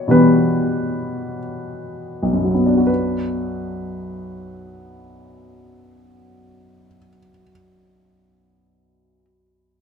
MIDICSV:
0, 0, Header, 1, 2, 480
1, 0, Start_track
1, 0, Key_signature, 2, "minor"
1, 0, Tempo, 1260504
1, 528, Tempo, 1485149
1, 1008, Time_signature, 4, 2, 24, 8
1, 1008, Tempo, 1357466
1, 2448, Tempo, 1327434
1, 3484, End_track
2, 0, Start_track
2, 0, Title_t, "Upright piano"
2, 0, Program_c, 0, 0
2, 0, Control_c, 0, 64, 127
2, 0, Note_on_c, 0, 73, 59
2, 30, Note_on_c, 0, 47, 41
2, 33, Note_on_c, 0, 52, 36
2, 38, Note_on_c, 0, 55, 33
2, 42, Note_on_c, 0, 59, 33
2, 42, Note_on_c, 0, 71, 52
2, 45, Note_off_c, 0, 73, 0
2, 527, Note_off_c, 0, 71, 0
2, 800, Note_on_c, 0, 35, 33
2, 833, Note_on_c, 0, 42, 29
2, 868, Note_on_c, 0, 54, 28
2, 898, Note_off_c, 0, 59, 0
2, 903, Note_on_c, 0, 59, 28
2, 940, Note_on_c, 0, 62, 30
2, 975, Note_on_c, 0, 66, 31
2, 989, Note_off_c, 0, 47, 0
2, 991, Note_off_c, 0, 52, 0
2, 993, Note_off_c, 0, 55, 0
2, 1006, Note_on_c, 0, 71, 39
2, 1019, Control_c, 0, 64, 0
2, 1107, Control_c, 0, 64, 127
2, 2423, Note_off_c, 0, 35, 0
2, 2460, Note_off_c, 0, 42, 0
2, 2499, Note_off_c, 0, 54, 0
2, 2538, Note_off_c, 0, 59, 0
2, 2579, Note_off_c, 0, 62, 0
2, 2619, Note_off_c, 0, 66, 0
2, 2654, Note_off_c, 0, 71, 0
2, 3484, End_track
0, 0, End_of_file